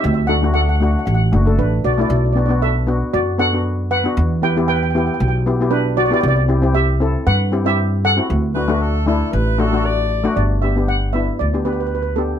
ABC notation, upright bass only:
X:1
M:4/4
L:1/8
Q:"Swing 16ths" 1/4=116
K:G
V:1 name="Upright bass" clef=bass
D,,4 A,,, F,,, A,,, B,,, | B,,,4 F,,4 | E,,4 B,,,4 | C,,4 G,,4 |
D,,4 A,,,4 | G,,,4 D,,4 |]